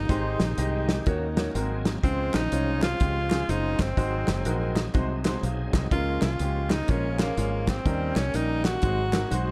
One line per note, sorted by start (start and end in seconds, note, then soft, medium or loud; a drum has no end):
0.00 1.51 D#4 loud
0.09 0.35 G#1 loud
0.09 0.85 G#2 medium
0.09 1.05 D#3 medium
0.09 0.40 G#3 loud
0.09 1.05 G#3 medium
0.09 1.05 C4 medium
0.09 0.40 D#4 medium
0.09 0.40 G4 medium
0.09 1.05 G4 medium
0.09 0.40 C5 loud
0.09 kick loud
0.09 closed hi-hat medium
0.40 0.55 A#1 medium
0.40 snare medium
0.40 closed hi-hat medium
0.57 0.99 C2 medium
0.57 0.88 G#3 medium
0.57 0.88 D#4 medium
0.57 0.89 G4 medium
0.57 0.89 D#5 medium
0.57 closed hi-hat medium
0.89 snare loud
0.89 closed hi-hat medium
1.06 1.48 D#2 medium
1.06 1.55 D#3 medium
1.06 1.52 D#3 medium
1.06 1.22 A#3 medium
1.06 1.55 A#3 medium
1.06 1.55 C#4 medium
1.06 1.22 D#4 medium
1.06 1.14 F4 medium
1.06 1.22 F#4 medium
1.06 1.22 C#5 medium
1.06 kick loud
1.06 closed hi-hat medium
1.13 1.58 F#4 medium
1.36 1.46 A#3 medium
1.36 1.46 D#4 medium
1.36 1.46 F#4 medium
1.36 1.46 C#5 medium
1.36 snare loud
1.36 closed hi-hat medium
1.54 1.96 G#1 medium
1.54 2.00 G#2 medium
1.54 2.04 F#3 medium
1.54 1.85 G#3 medium
1.54 2.04 A#3 medium
1.54 1.85 C4 medium
1.54 2.02 C4 medium
1.54 1.86 F#4 medium
1.54 2.03 G#4 medium
1.54 1.86 A#4 medium
1.54 closed hi-hat medium
1.85 snare loud
1.85 closed hi-hat medium
2.03 2.29 C#2 loud
2.03 2.79 C#3 medium
2.03 3.94 F3 medium
2.03 2.34 G#3 medium
2.03 3.94 C4 medium
2.03 2.36 C4 medium
2.03 2.34 C#4 medium
2.03 3.94 C#4 medium
2.03 2.34 F4 medium
2.03 3.94 G#4 medium
2.03 2.34 C5 medium
2.03 kick loud
2.03 closed hi-hat medium
2.34 2.50 A#1 medium
2.34 2.83 D#4 medium
2.34 snare medium
2.34 clap medium
2.34 closed hi-hat medium
2.52 2.93 C2 medium
2.52 2.82 G#3 medium
2.52 2.83 C#4 medium
2.52 2.83 F4 medium
2.52 2.83 C#5 medium
2.52 closed hi-hat medium
2.82 3.52 F4 loud
2.82 snare medium
2.82 clap medium
2.82 closed hi-hat medium
3.00 3.42 C#2 medium
3.00 3.16 G#3 medium
3.00 3.16 C#4 medium
3.00 3.16 F4 medium
3.00 3.16 G4 medium
3.00 kick loud
3.00 closed hi-hat medium
3.30 3.40 G#3 medium
3.30 3.40 C#4 medium
3.30 3.40 F4 medium
3.30 3.40 G#4 medium
3.30 snare medium
3.30 clap medium
3.30 closed hi-hat medium
3.49 3.75 F#1 medium
3.49 3.79 G#3 medium
3.49 3.80 C#4 medium
3.49 3.83 D#4 medium
3.49 3.80 F4 medium
3.49 3.80 C5 medium
3.49 closed hi-hat medium
3.79 3.95 G1 medium
3.79 4.77 C4 medium
3.79 kick medium
3.79 snare loud
3.79 clap medium
3.79 closed hi-hat medium
3.97 4.23 G#1 medium
3.97 4.73 G#2 medium
3.97 4.92 F#3 medium
3.97 4.28 G#3 medium
3.97 4.92 C4 medium
3.97 4.93 D#4 medium
3.97 4.28 D#4 medium
3.97 4.28 F#4 medium
3.97 4.93 G#4 medium
3.97 4.28 C5 medium
3.97 kick loud
3.97 closed hi-hat medium
4.28 4.43 F#1 medium
4.28 snare medium
4.28 clap medium
4.28 closed hi-hat medium
4.45 4.87 A#1 medium
4.45 4.76 G#3 medium
4.45 4.76 D#4 medium
4.45 4.76 F#4 medium
4.45 4.77 A#4 medium
4.45 closed hi-hat medium
4.76 snare loud
4.76 clap medium
4.76 closed hi-hat medium
4.93 5.36 C2 medium
4.93 5.69 C3 medium
4.93 5.90 F#3 medium
4.93 5.09 G#3 medium
4.93 5.90 C4 medium
4.93 5.10 D#4 medium
4.93 5.90 D#4 medium
4.93 5.10 F#4 medium
4.93 5.90 G#4 medium
4.93 5.10 C5 loud
4.93 kick loud
4.93 closed hi-hat medium
5.25 5.34 G#3 medium
5.25 5.34 D#4 medium
5.25 5.34 F#4 medium
5.25 5.35 C5 medium
5.25 snare loud
5.25 clap medium
5.25 closed hi-hat medium
5.43 5.69 B1 medium
5.43 5.72 F5 medium
5.43 closed hi-hat medium
5.73 5.89 C2 medium
5.73 6.20 D#5 medium
5.73 kick medium
5.73 snare loud
5.73 clap medium
5.73 closed hi-hat medium
5.91 6.17 C#2 medium
5.91 6.67 C#3 medium
5.91 7.82 F3 medium
5.91 6.22 G#3 medium
5.91 7.82 A#3 medium
5.91 7.82 C#4 medium
5.91 6.22 C#4 medium
5.91 6.20 F4 loud
5.91 6.23 F4 medium
5.91 5.99 G4 medium
5.91 6.23 A#4 medium
5.91 kick loud
5.91 closed hi-hat medium
5.97 7.85 G#4 medium
6.22 6.37 C2 medium
6.22 6.73 F4 medium
6.22 snare medium
6.22 clap medium
6.22 closed hi-hat medium
6.39 6.81 C#2 medium
6.39 6.71 G#3 medium
6.39 6.71 C#4 medium
6.39 6.71 F4 medium
6.39 6.71 G4 medium
6.39 closed hi-hat medium
6.70 6.91 D#4 medium
6.70 snare loud
6.70 clap medium
6.70 closed hi-hat medium
6.88 7.30 A#1 medium
6.88 7.04 G#3 medium
6.88 7.04 C#4 medium
6.88 7.20 C#4 medium
6.88 7.04 F4 medium
6.88 7.05 A#4 medium
6.88 kick loud
6.88 closed hi-hat medium
7.19 7.28 G#3 medium
7.19 7.70 A#3 medium
7.19 7.28 C#4 medium
7.19 7.28 F4 medium
7.19 7.29 C#5 medium
7.19 snare loud
7.19 clap medium
7.19 closed hi-hat medium
7.37 7.79 G#1 medium
7.37 7.68 G#3 medium
7.37 7.68 C#4 medium
7.37 7.68 F4 medium
7.37 7.68 C#5 medium
7.37 closed hi-hat medium
7.67 8.19 C4 medium
7.67 kick medium
7.67 snare loud
7.67 clap medium
7.67 closed hi-hat medium
7.85 8.12 D#2 medium
7.85 8.61 D#3 medium
7.85 8.81 D#3 medium
7.85 8.16 G3 medium
7.85 8.81 A#3 medium
7.85 8.16 C#4 medium
7.85 8.81 C#4 medium
7.85 8.16 D#4 medium
7.85 8.81 G4 medium
7.85 8.17 A#4 loud
7.85 kick loud
7.85 closed hi-hat medium
8.16 8.31 C2 medium
8.16 8.37 C#4 medium
8.16 snare medium
8.16 clap medium
8.16 closed hi-hat medium
8.34 8.75 A#1 medium
8.34 8.65 G3 medium
8.34 8.65 C#4 medium
8.34 8.65 D#4 medium
8.34 8.65 A#4 medium
8.34 closed hi-hat medium
8.65 9.51 F#4 loud
8.65 snare loud
8.65 clap medium
8.65 closed hi-hat medium
8.82 9.24 G#1 medium
8.82 9.51 G#2 medium
8.82 9.51 F#3 medium
8.82 8.98 G#3 medium
8.82 9.51 C4 medium
8.82 9.51 D#4 soft
8.82 8.98 D#4 medium
8.82 8.98 F#4 medium
8.82 9.51 G#4 medium
8.82 8.98 C5 medium
8.82 kick loud
8.82 closed hi-hat medium
9.13 9.22 G#3 medium
9.13 9.22 D#4 medium
9.13 9.22 F#4 medium
9.13 9.23 A#4 medium
9.13 snare loud
9.13 clap medium
9.13 closed hi-hat medium
9.30 9.51 B1 medium
9.30 9.51 G#3 medium
9.30 9.51 D#4 medium
9.30 9.51 F#4 medium
9.30 9.51 C5 medium
9.30 9.51 F#5 medium
9.30 closed hi-hat medium